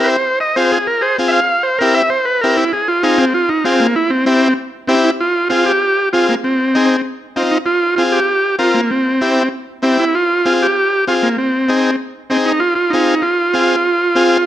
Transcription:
Already playing: C4 E4 G4
0.04 B4 C5
0.40 D#5
0.56 C4 F4 G#4 C5
0.72 G#4
0.87 A#4
1.01 G#4 C5
1.19 C4 F4 G#4
1.28 E5
1.32 F5
1.63 C5
1.79 C4 E4 G4 A#4
1.94 E5
2.10 C5
2.25 B4
2.41 C4 E4 G4 A#4
2.57 E4
2.73 G#4
2.88 F4
3.03 C4 D#4 F4 G#4
3.18 C4
3.34 F4
3.49 D#4
3.64 C4 F4 G#4
3.80 A#3
3.96 E4
4.10 C4
4.26 C4 E4 G4
4.88 C4 E4 G4
5.04 E4
5.20 F4
5.50 C4 F4 G#4
5.66 G4
6.13 C4 F4 G#4
6.29 A#3
6.44 C4
6.75 C4 D#4 G#4
7.36 C4 D#4 F4
7.51 D#4
7.66 F4
7.96 C4 F4 G#4
8.12 G4
8.59 C4 F4 A#4
8.74 A#3
8.91 C4
9.21 C4 E4 G4
9.82 C4 E4 G4
9.99 E4
10.15 F4
10.45 C4 F4 G#4
10.62 G4
11.07 C4 F4 G#4
11.23 A#3
11.38 C4
11.69 C4 D#4 G#4
12.30 C4 D#4 G#4
12.46 D#4
12.60 F4
12.75 F4
12.90 C4 D#4 F4 G#4
13.22 F4
13.54 C4 F4 G#4
14.15 C4 F4 G#4

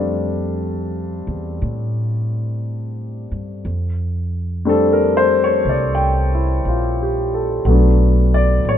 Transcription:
Already playing: F2 G3 A3 C4 D4 A4 D5 F5
1.27 E2
1.62 A2
3.32 G2
3.65 F2
4.65 G3 A3 C4 D4 A4
4.93 A#4
5.17 C5
5.44 C#5
5.65 C2
5.69 D5
5.95 G5
6.34 E4
6.65 A#1 F4
7.03 G4
7.34 A4
7.65 B1 F#3 A3 B3
7.70 D4
8.34 D5
8.65 A1
8.69 C#5

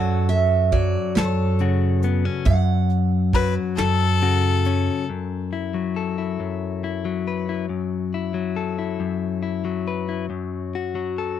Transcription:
Already playing: F#2 F#3 F#4 A4 F#5
0.29 E5, closed hi-hat
0.72 F#3 D5, kick, closed hi-hat
1.15 F#2 A4 C#5, snare, closed hi-hat
1.59 C#3 F#4, closed hi-hat
2.02 B3 B4, closed hi-hat
2.25 C#4
2.45 F#2 F#5, kick, closed hi-hat
2.90 closed hi-hat
3.33 F#3 B4, kick, closed hi-hat
3.76 F#2 A4, snare, closed hi-hat
4.21 C#3 F#4, closed hi-hat
4.65 C#4, closed hi-hat
5.10 F#2
5.53 E4
5.74 F#3
5.96 A4
6.18 E4
6.40 F#2
6.84 E4
7.05 F#3
7.27 B4
7.49 E4
7.69 F#2
8.14 E4
8.34 F#3
8.56 A4
8.79 E4
9.00 F#2
9.43 E4
9.65 F#3
9.88 B4
10.09 E4
10.30 F#2
10.75 F#4
10.95 F#3
11.18 A4

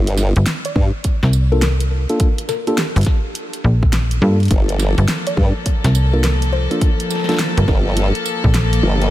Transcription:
Already playing: G1
0.07 closed hi-hat
0.17 snare, tambourine
0.36 G1, closed hi-hat
0.46 snare, closed hi-hat
0.65 D5, closed hi-hat
0.76 G2, kick
1.04 kick, closed hi-hat
1.23 C2, snare
1.33 tambourine
1.52 A#3 D4 F4 A4 A#4
1.62 A#4, snare, closed hi-hat
1.80 closed hi-hat
2.09 A#3 D4 F4 A4, closed hi-hat
2.20 kick, closed hi-hat
2.38 closed hi-hat
2.49 A#4, snare, tambourine
2.67 A#3 D4 F4 G4 A4, closed hi-hat
2.78 G4, snare, closed hi-hat
2.96 G1, closed hi-hat
2.98 closed hi-hat
3.01 closed hi-hat
3.03 closed hi-hat
3.05 kick, snare, closed hi-hat
3.35 closed hi-hat
3.53 closed hi-hat
3.64 A#1
3.83 kick
3.93 snare, closed hi-hat
4.11 closed hi-hat
4.22 G2 A#3 D4 F4 A4
4.40 closed hi-hat
4.43 closed hi-hat
4.45 closed hi-hat
4.48 F3 A#3 A4, closed hi-hat
4.51 G1, kick, closed hi-hat
4.69 closed hi-hat
4.79 snare, tambourine
4.98 G1, closed hi-hat
5.08 snare, closed hi-hat
5.27 D5, closed hi-hat
5.37 G2, kick
5.66 kick, closed hi-hat
5.84 C2, snare, closed hi-hat
5.95 tambourine
6.13 A#3 D4 F4 A4 A#4
6.24 A#4, snare, closed hi-hat
6.42 closed hi-hat
6.53 C5
6.71 A#3 D4 F4 A4, closed hi-hat
6.81 kick, closed hi-hat
7.00 closed hi-hat
7.11 snare, tambourine
7.15 snare
7.20 snare
7.24 snare
7.29 A#3 D4 F4 A4, snare, closed hi-hat
7.32 snare
7.34 snare
7.37 snare
7.39 snare, closed hi-hat
7.57 G1 A#4, closed hi-hat
7.68 G1 A#4, kick, snare
7.97 closed hi-hat
8.15 closed hi-hat
8.26 tambourine
8.44 A#1, kick
8.54 snare, closed hi-hat
8.73 closed hi-hat
8.83 G1
9.02 closed hi-hat

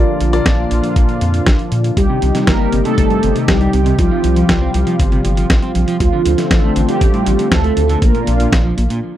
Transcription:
Already playing: A#2 D3 F3 D4 F4 A#4 D5
0.20 A#1, closed hi-hat
0.33 D4 F4 A#4 D5, closed hi-hat
0.46 A#1, kick, snare, closed hi-hat
0.71 A#1, closed hi-hat
0.84 closed hi-hat
0.96 A#1, kick, closed hi-hat
1.09 closed hi-hat
1.21 F2, closed hi-hat
1.34 closed hi-hat
1.46 A#1, kick, snare, closed hi-hat
1.59 closed hi-hat
1.72 A#2, closed hi-hat
1.84 closed hi-hat
1.97 C2 C3 D#3 G3 D#4 G4, kick, closed hi-hat
2.10 C3
2.22 C2 C3, closed hi-hat
2.35 C3, snare, closed hi-hat
2.47 G1 A#3 A#4, kick, snare, closed hi-hat
2.60 G3
2.72 G1 C3, closed hi-hat
2.85 C3 A3 A4, closed hi-hat
2.98 G1, kick, closed hi-hat
3.10 G2, closed hi-hat
3.23 G1 C3, closed hi-hat
3.36 C3, closed hi-hat
3.48 C2 G3 G4, kick, snare, closed hi-hat
3.61 G3, closed hi-hat
3.73 C2 C3, closed hi-hat
3.86 C3, closed hi-hat
3.98 C2 F3 G3 F4, kick, closed hi-hat
4.11 F3
4.24 C2 F3, closed hi-hat
4.36 F3, closed hi-hat
4.49 C2, kick, snare, closed hi-hat
4.62 C4
4.74 C2 F3, closed hi-hat
4.87 F3, closed hi-hat
4.99 G1, kick, closed hi-hat
5.12 C3, closed hi-hat
5.25 G1 F3, closed hi-hat
5.37 F3, closed hi-hat
5.50 A#1, kick, snare, closed hi-hat
5.62 C4, closed hi-hat
5.75 A#1 F2, closed hi-hat
5.88 F3, closed hi-hat
6.00 D2 D3 F3 A3 C4 F4, kick, closed hi-hat
6.13 D3
6.26 D2 D3, closed hi-hat
6.38 D3, snare, closed hi-hat
6.51 A1 A3 A4, kick, snare, closed hi-hat
6.63 A3
6.76 A1 D3, closed hi-hat
6.89 D3 G3 G4, closed hi-hat
7.01 A1, kick, closed hi-hat
7.14 A2, closed hi-hat
7.26 A1 D3, closed hi-hat
7.39 D3, closed hi-hat
7.52 D2 A3 A4, kick, snare, closed hi-hat
7.64 A3, closed hi-hat
7.77 D2 D3 A3 A4, closed hi-hat
7.89 D3, closed hi-hat
8.02 A#1 A#2 A#3 D4 F4 A#4, kick, closed hi-hat
8.15 A#2, closed hi-hat
8.27 A#1 A#2, closed hi-hat
8.40 A#2, closed hi-hat
8.52 A#1, kick, snare, closed hi-hat
8.65 F3
8.78 A#1 A#2, closed hi-hat
8.90 A#2, closed hi-hat

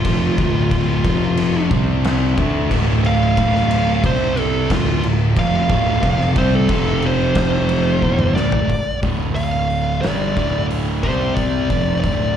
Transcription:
Already playing: D3 A3 F4 E5
0.05 F1 F2 C3 F3, kick, crash
0.38 D1 D2 A2 D3, kick, crash
0.71 kick, crash
1.05 F1 F2 C3 F3 C4 G4, kick, crash
1.37 crash
1.71 C2 C3 G3 C4 D4, kick, crash
2.04 snare, crash
2.37 D2 D3 E3 A3 D4, kick, crash
2.71 D1 D2 A2 D3, kick, crash
3.05 F5, crash
3.37 D1 D2 A2 D3, kick, crash
3.55 snare
3.71 crash
4.02 C2 C3 G3 C4 D4, kick, crash
4.06 C5
4.37 A4, crash
4.70 D1 D2 A2 D3 A3 F4, kick, snare, crash
5.03 D1 D2 A2, crash
5.37 F1 F2 C3 F3 F5, kick, crash
5.69 D1 D2 A2 D3, kick, crash
6.03 F1 F2 C3 F3, kick, crash
6.20 snare
6.36 C2 C3 G3 C4 C5, kick, crash
6.55 A4
6.69 F1 F2 C3 F3 C4 G4, kick, crash
7.02 crash
7.06 C5
7.35 kick, snare, crash
7.69 crash
8.02 E1 E2 B2 D3 E3 A3 E4, kick
8.19 mid tom
8.35 D1 D2 A2 D3 D5, snare
8.52 floor tom
8.69 kick, open hi-hat
9.02 D1 D2 A2 D3, kick, open hi-hat
9.35 F5, open hi-hat
9.70 open hi-hat
10.01 G1 G2 D3 G3 D5, snare, open hi-hat
10.36 D1 D2 A2 D3, kick, snare, open hi-hat
10.70 open hi-hat
11.03 C2 C3 G3 C4 C5, kick, open hi-hat
11.35 D5, kick, open hi-hat
11.70 F1 F2 C3 F3, kick, open hi-hat
12.00 D2 A2 D5, kick, open hi-hat
12.04 D1 D3

